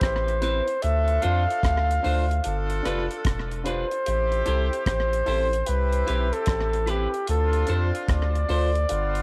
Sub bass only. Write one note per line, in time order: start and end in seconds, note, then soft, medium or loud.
0.02 0.61 A1 medium
0.84 1.19 D2 medium
1.25 1.47 F2 loud
1.64 1.99 D2 medium
2.05 2.40 D2 medium
2.46 2.81 G1 loud
2.86 3.08 F1 medium
3.25 3.84 E1 medium
4.07 4.42 A1 medium
4.47 4.70 C2 loud
4.87 5.22 A1 medium
5.27 5.63 A1 medium
5.68 6.04 C2 medium
6.09 6.31 B1 medium
6.48 7.07 A1 medium
7.29 7.65 D2 loud
7.69 7.92 F2 medium
8.09 8.45 D2 medium
8.50 8.86 D2 medium
8.91 9.22 G1 loud